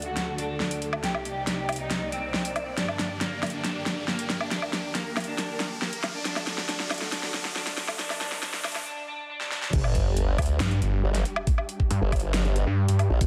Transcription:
Already playing: D2 D3 A3 F#4 A4, riser
0.02 F#4, closed hi-hat
0.17 snare, closed hi-hat
0.38 D4, closed hi-hat
0.60 snare
0.71 closed hi-hat
0.82 closed hi-hat
0.93 low woodblock
1.04 C2 C3 A#3 D#4 G4 D5, snare, closed hi-hat
1.15 low woodblock
1.25 closed hi-hat
1.47 G4, snare, closed hi-hat
1.69 closed hi-hat, low woodblock
1.72 closed hi-hat
1.76 D#4, closed hi-hat
1.91 snare, closed hi-hat
2.12 C4, closed hi-hat
2.34 snare
2.45 closed hi-hat
2.56 closed hi-hat, low woodblock
2.77 G2 D3 D4 G4, snare, closed hi-hat
2.88 low woodblock
2.99 snare, closed hi-hat
3.21 A#3, snare, closed hi-hat
3.43 snare, closed hi-hat, low woodblock
3.46 closed hi-hat
3.50 D4, closed hi-hat
3.64 D4, snare, closed hi-hat
3.86 snare, closed hi-hat
4.08 A#3, snare
4.19 closed hi-hat
4.30 snare, closed hi-hat
4.41 D4, low woodblock
4.51 D#2 D#3 D4 A#4, snare, closed hi-hat
4.62 low woodblock
4.73 snare, closed hi-hat
4.95 A#3, snare, closed hi-hat
5.17 snare, closed hi-hat, low woodblock
5.20 closed hi-hat
5.24 D4, closed hi-hat
5.38 D4, snare, closed hi-hat
5.60 snare, closed hi-hat
5.82 A#3, snare
5.93 closed hi-hat
6.04 snare, closed hi-hat, low woodblock
6.15 D4
6.25 D2 D3 A3 D4 F#4 A4, snare, closed hi-hat
6.36 snare, low woodblock
6.47 snare, closed hi-hat
6.58 snare
6.69 D4, snare, closed hi-hat
6.80 snare
6.91 snare, closed hi-hat, low woodblock
6.94 closed hi-hat
6.98 snare, closed hi-hat
7.12 D4, snare, closed hi-hat
7.23 snare
7.34 snare, closed hi-hat
7.45 snare
7.56 D4, snare
7.67 snare, closed hi-hat
7.78 snare, closed hi-hat
7.88 snare, low woodblock
7.99 C2 C3 D4 D#4 A#4, snare, closed hi-hat
8.10 snare, low woodblock
8.21 D4, snare, closed hi-hat
8.32 snare
8.43 D4, snare, closed hi-hat
8.54 snare
8.64 D4, snare, closed hi-hat, low woodblock
8.68 closed hi-hat
8.72 snare, closed hi-hat, low woodblock
8.86 D4
9.08 D4
9.30 D4
9.41 snare
9.51 D4, snare
9.62 snare
9.73 G1 G3 D4 G4, kick, closed hi-hat, crash, sub drop
9.84 low woodblock
9.95 kick, closed hi-hat
10.17 closed hi-hat
10.38 D2, kick, closed hi-hat, low woodblock
10.42 closed hi-hat
10.46 closed hi-hat
10.60 G2, snare, closed hi-hat
10.71 closed hi-hat
10.82 G1, closed hi-hat
11.04 G1
11.15 snare, closed hi-hat
11.25 closed hi-hat
11.36 low woodblock
11.47 kick, closed hi-hat
11.58 low woodblock
11.69 closed hi-hat
11.80 kick
11.91 G2, closed hi-hat
12.02 G1
12.12 kick, closed hi-hat, low woodblock
12.16 closed hi-hat
12.20 closed hi-hat
12.34 snare, closed hi-hat
12.45 closed hi-hat
12.56 closed hi-hat
12.67 G2
12.88 G2, closed hi-hat
12.99 closed hi-hat, low woodblock
13.10 A#1
13.21 G1, kick, closed hi-hat

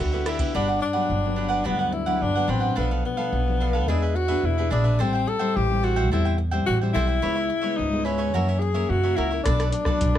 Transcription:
Already playing: G4 B4 E5
0.00 D2 D3 F#4
0.12 B3 E4 G4 A4 B4 E5
0.26 D4 E4 G4 B4 E5, cross-stick, ride
0.39 B3 D4 F#4 G4 B4 E5, kick, ride
0.54 G1 G2 D4 G4 B4 F#5
0.68 G4 B4 F#5
0.80 D4, muted cavaquinho stroke
0.93 F#3 B3 D4 G4 B4 F#5
1.10 G1 D3
1.25 F#3 B3 D4
1.36 D4 G4 B4 F#5
1.49 G4 B4 F#5
1.64 D2 G2 F#3 B3 D4 G4 B4 F#5
1.79 G4 B4 F#5
1.92 E4, muted cavaquinho stroke
2.06 F#3 B3 D4 G4 B4 F#5
2.21 G1 D3 D4
2.35 F#3 B3 D4 G4 B4 F#5
2.48 A1 C4 D4 G4 B4 F#5
2.60 G4 B4 F#5
2.76 B1 B2 F3 A3 B3 D4 A4 B4 F5
2.91 A4 B4 F5
3.05 B3, muted cavaquinho stroke
3.17 F3 A3 D4 A4 B4 F5
3.33 B1 B2
3.47 F3 A3 D4
3.60 D4 A4 B4 F5
3.73 A4 B4 F5
3.88 E2 E3 G#3 B3 D4 G#4 B4 E5
4.02 G#4 B4 E5
4.15 F#4, muted cavaquinho stroke
4.28 B3 D4 G#4 B4 E5
4.43 E2 B2 E4
4.58 B3 D4 G#4 B4 E5
4.70 A#1 D4 G#4 B4 E5
4.84 G#4 B4 E5
4.99 A1 A2 G3 C4 E4 A4 C5 E5 G5
5.13 C5 E5 G5
5.27 A4, muted cavaquinho stroke
5.39 G3 C4 E4 C5 E5 G5
5.56 A1 E3 G4
5.70 G3 C4 E4
5.83 F#4 A4 C5 E5 G5
5.96 C5 E5 G5
6.12 E2 A2 G3 C4 E4 A4 C5 E5 G5
6.25 C5 E5 G5
6.38 muted cavaquinho stroke
6.51 G3 C4 E4 C5 E5 G5
6.66 A1 E3 F#4
6.81 G3 C4 E4 C5 E5 G5
6.93 B1 E4 A4 C5 E5 G5
7.07 C5 E5 G5
7.22 C#2 C#3 G#3 B3 E4 B4 C#5 E5
7.35 B4 C#5 E5
7.49 muted cavaquinho stroke
7.61 G#3 B3 E4 B4 C#5 E5
7.77 C#2 G#2 D#4
7.93 G#3 B3 E4
8.04 C#4 E4 B4 C#5 E5
8.18 B4 C#5 E5
8.34 F#2 E3 A#3 C#4 F#4 A#4 C#5 E5
8.48 A#4 C#5 E5
8.59 G#4, muted cavaquinho stroke
8.74 E3 A#3 C#4 A#4 C#5 E5
8.89 F#2 C#3 F#4
9.03 E3 A#3 C#4 A#4 C#5 E5
9.16 C#2 E4 F#4 A#4 C#5 E5
9.31 A#4 C#5 E5
9.43 B1 B2 F#3 A3 D4 A4 B4 D5, kick, cross-stick, closed hi-hat
9.60 A4 B4 D5, cross-stick, closed hi-hat
9.71 D4, muted cavaquinho stroke, closed hi-hat
9.85 F#3 A3 D4 A4 B4 D5, kick, cross-stick
10.01 B1 F#2, kick, closed hi-hat
10.15 cross-stick

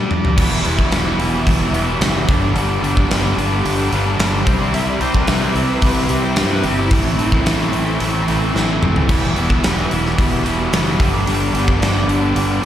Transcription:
Already playing: G3 D4 G4 D5
0.11 mid tom
0.25 floor tom
0.36 E1 E2 B2 E3 G3 B3 E4 G4 E5, kick, crash
0.63 E1 E2 B2 E3 G3 B3 E4, open hi-hat
0.77 G3 B3 E4, kick
0.91 E1 E2 B2 E3 G3 B3 E4, snare, open hi-hat
1.04 G3 B3 E4
1.18 E1 E2 B2 E3 G3 B3 E4, open hi-hat
1.32 G3 B3 E4
1.46 E1 E2 B2 E3, kick, open hi-hat
1.73 E1 E2 B2 E3 G3 B3 E4, open hi-hat
1.87 G3 B3 E4
2.00 F#1 E2 B2 E3 G3 B3 E4, snare, open hi-hat
2.27 G1 G2 D3 G3 B3 D4 G4 D5, kick, open hi-hat
2.41 G3 B3 D4
2.53 G1 G2 D3 G3 B3 D4, open hi-hat
2.81 G1 G2 D3 G3 B3 D4, open hi-hat
2.95 G3 B3 D4, kick
3.09 G1 G2 D3 G3 B3 D4, snare, open hi-hat
3.23 G3 B3 D4
3.37 G1 G2 D3 G3 B3 D4, open hi-hat
3.50 G3 B3 D4
3.65 G1 G2 D3 G3, open hi-hat
3.91 G1 G2 D3 G3 B3 D4, open hi-hat
4.06 G3 B3 D4
4.18 G1 G2 D3 G3 B3 D4, snare, open hi-hat
4.45 C2 C3 G3 C4 E4 G4 E5, kick, open hi-hat
4.59 G3 C4 E4
4.72 C2 C3 G3 C4 E4 E5, open hi-hat
4.90 D5
4.99 C2 C3 G3 C4 E4 C5, open hi-hat
5.14 G3 C4 E4 B4, kick
5.26 C2 C3 G3 C4 E4, snare, open hi-hat
5.40 G3 C4 E4
5.53 C2 C3 G3 C4 E4, open hi-hat
5.67 G3 C4 E4
5.82 C2 C3 G3 C4, kick, open hi-hat
6.08 C2 C3 G3 C4 E4, open hi-hat
6.22 G3 C4 E4 C5
6.36 G2 C3 G3 C4 E4, snare, open hi-hat
6.51 B4
6.63 G1 C3 G3 C4 E4 G4, open hi-hat
6.78 G3 C4 E4
6.90 A1 A2 E3 A3 C4 E4 A4 E5, kick, open hi-hat
7.18 A1 A2 E3 A3 C4 E4, open hi-hat
7.32 A3 C4 E4, kick
7.44 A1 A2 E3 A3 C4 E4, snare, open hi-hat
7.58 A3 C4 E4
7.72 A1 A2 E3 A3 C4 E4, open hi-hat
7.86 A3 C4 E4
8.00 A1 A2 E3 A3, open hi-hat
8.26 A1 A2 E3 A3 C4 E4, open hi-hat
8.40 A3 C4 E4
8.53 A1 A2 E3 A3 C4 E4, snare
8.80 F#1 A2 E3 A3 C4 E4, mid tom
8.95 A3 C4 E4, floor tom
9.07 E1 E2 B2 E3 G3 B3 E4 G4 E5, kick, open hi-hat, crash
9.35 E1 E2 B2 E3 G3 B3 E4, open hi-hat
9.50 G3 B3 E4, kick
9.63 E1 E2 B2 E3 G3 B3 E4, snare, open hi-hat
9.77 G3 B3 E4
9.90 E1 E2 B2 E3 G3 B3 E4, open hi-hat
10.05 G3 B3 E4, snare
10.18 E1 E2 B2 E3, kick, open hi-hat
10.45 E1 E2 B2 E3 G3 B3 E4, open hi-hat
10.59 G3 B3 E4
10.72 F#1 E2 B2 E3 G3 B3, snare, open hi-hat
10.76 E4
10.99 G1 G2 D3 G3 B3 D4 G4 D5, kick, open hi-hat
11.14 G3 B3 D4
11.27 G1 G2 D3 G3 B3 D4, open hi-hat
11.53 G1 G2 D3 G3 B3 D4, open hi-hat
11.67 G3 B3 D4, kick
11.80 G1 G2 D3 G3 B3 D4, snare, open hi-hat
11.93 G3 B3 D4
12.07 G1 G2 D3 G3 B3 D4, open hi-hat
12.21 G3 B3 D4
12.34 G1 G2 D3 G3, open hi-hat
12.61 D3

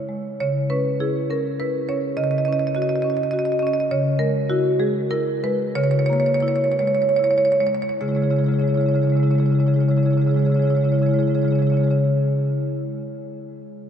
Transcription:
Already playing: C#3 E4
0.09 G#3
0.40 C#3 C#5
0.70 C#4 B4
1.00 E4 G#4
1.30 C#4 A#4
1.60 E4 B4
1.89 C#4 C#5
2.17 C#3 D#5
2.24 D#5
2.31 D#5
2.38 D#5
2.45 C#4 D#5
2.53 D#5
2.59 D#5
2.67 D#5
2.75 F#4 D#5
2.82 D#5
2.89 D#5
2.96 D#5
3.02 C#4 D#5
3.10 D#5
3.17 D#5
3.23 D#5
3.31 F#4 D#5
3.39 D#5
3.45 D#5
3.52 D#5
3.59 C#4 D#5
3.67 D#5
3.73 D#5
3.80 D#5
3.91 C#3 C#5
4.19 G#3 A#4
4.50 E4 F#4
4.79 G#3 G#4
5.11 E4 A#4
5.44 G#3 B4
5.75 C#3 C#5
5.84 C#5
5.91 C#5
5.99 C#5
6.06 A#3 C#5
6.13 C#5
6.20 C#5
6.26 C#5
6.34 C#5
6.40 E4 C#5
6.48 C#5
6.56 C#5
6.64 C#5
6.72 C#5
6.79 G#3 C#5
6.87 C#5
6.95 C#5
7.02 C#5
7.09 C#5
7.16 E4 C#5
7.24 C#5
7.31 C#5
7.38 C#5
7.45 C#5
7.52 C#5
7.60 G#3 C#5
7.67 C#5
7.75 C#5
7.82 C#5
7.89 C#5
8.01 C#3 G#3 E4 G#4 C#5
8.08 C#3 G#3 E4 G#4 C#5
8.15 G#3 E4 G#4 C#5
8.21 C#3 G#3 E4 G#4 C#5
8.30 C#3 G#3 E4 G#4 C#5
8.36 C#3 G#3 E4 G#4 C#5
8.44 E4 G#4 C#5
8.49 C#3 G#3 C#5
8.54 G#3 E4 G#4
8.59 C#3 E4 G#4 C#5
8.64 G#3 C#5
8.68 C#3 G#3 E4 G#4
8.74 C#3 E4 G#4 C#5
8.80 G#3 E4 C#5
8.86 C#3 G#3 G#4 C#5
8.92 C#3 E4 G#4 C#5
8.96 G#3 E4
9.02 C#3 G#3 G#4 C#5
9.07 E4 G#4 C#5
9.12 C#3 G#3 E4
9.17 G#3 G#4 C#5
9.23 C#3 E4 G#4 C#5
9.27 C#3 G#3 E4 C#5
9.31 G#3 G#4
9.38 C#3 E4 G#4 C#5
9.43 G#3 E4 C#5
9.47 C#3 G#3 G#4
9.52 E4 G#4 C#5
9.59 C#3 G#3 E4 G#4 C#5
9.66 C#3 G#3 E4 G#4 C#5
9.74 G#3 E4 G#4 C#5
9.79 C#3 E4 C#5
9.83 G#3 G#4
9.88 C#3 G#3 E4 G#4 C#5
9.96 C#3 G#3 E4 G#4 C#5
10.03 C#3 G#3 E4 G#4 C#5
10.11 G#3 E4 G#4 C#5
10.17 C#3 E4 C#5
10.21 G#3 G#4 C#5
10.26 C#3 G#3 E4 G#4
10.31 E4 C#5
10.36 C#3 G#3 G#4 C#5
10.42 C#3 G#3 E4 G#4 C#5
10.50 G#3 E4 G#4
10.54 C#3 E4 C#5
10.59 G#3 G#4 C#5
10.64 C#3 G#3 E4 G#4
10.70 E4 C#5
10.74 C#3 G#3 G#4 C#5
10.78 E4 G#4
10.82 C#3 G#3 E4 C#5
10.89 G#3 G#4 C#5
10.93 C#3 E4 G#4
10.98 G#3 E4 C#5
11.02 C#3 G#3 G#4
11.06 E4 C#5
11.11 C#3 G#3 G#4 C#5
11.16 C#3 E4 G#4
11.20 G#3 E4 C#5
11.27 C#3 G#3 G#4 C#5
11.31 E4 G#4 C#5
11.35 C#3 G#3 E4
11.42 C#3 G#3 E4 G#4 C#5
11.48 G#4 C#5
11.52 C#3 G#3 E4 C#5
11.59 C#3 G#3 E4 G#4 C#5
11.67 G#3 E4 G#4 C#5
11.72 C#3 E4 G#4
11.77 G#3 E4 C#5
11.81 C#3 G#4 C#5
11.87 C#3 G#3 E4 G#4
11.91 C#5

